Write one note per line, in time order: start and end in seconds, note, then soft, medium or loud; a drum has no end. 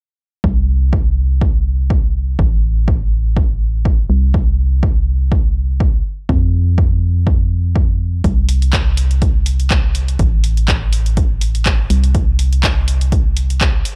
0.44 2.37 C2 medium
0.44 kick loud
0.93 kick loud
1.41 kick loud
1.90 kick loud
2.39 4.08 A1 medium
2.39 kick loud
2.88 kick loud
3.37 kick loud
3.85 kick loud
4.10 6.03 C2 medium
4.34 kick loud
4.83 kick loud
5.32 kick loud
5.80 kick loud
6.29 8.22 F2 medium
6.29 kick loud
6.78 kick loud
7.27 kick loud
7.76 kick loud
8.24 10.17 C2 medium
8.24 kick loud
8.24 closed hi-hat medium
8.49 open hi-hat loud
8.62 closed hi-hat soft
8.73 kick loud
8.73 clap loud
8.73 closed hi-hat medium
8.97 open hi-hat loud
9.11 closed hi-hat soft
9.22 kick loud
9.22 closed hi-hat medium
9.46 open hi-hat loud
9.60 closed hi-hat soft
9.71 kick loud
9.71 clap loud
9.71 closed hi-hat medium
9.95 open hi-hat medium
10.08 closed hi-hat soft
10.19 11.88 A1 medium
10.19 kick loud
10.19 closed hi-hat medium
10.44 open hi-hat medium
10.57 closed hi-hat soft
10.68 kick loud
10.68 clap loud
10.68 closed hi-hat medium
10.93 open hi-hat loud
11.06 closed hi-hat soft
11.17 kick loud
11.17 closed hi-hat medium
11.41 open hi-hat medium
11.55 closed hi-hat soft
11.66 kick loud
11.66 clap loud
11.66 closed hi-hat medium
11.90 13.83 C2 medium
11.90 open hi-hat medium
12.04 closed hi-hat soft
12.15 kick loud
12.15 closed hi-hat medium
12.39 open hi-hat medium
12.53 closed hi-hat medium
12.63 kick loud
12.63 clap loud
12.63 closed hi-hat medium
12.88 open hi-hat loud
13.01 closed hi-hat medium
13.12 kick loud
13.12 closed hi-hat medium
13.37 open hi-hat medium
13.50 closed hi-hat medium
13.61 kick loud
13.61 clap loud
13.61 closed hi-hat medium
13.85 open hi-hat medium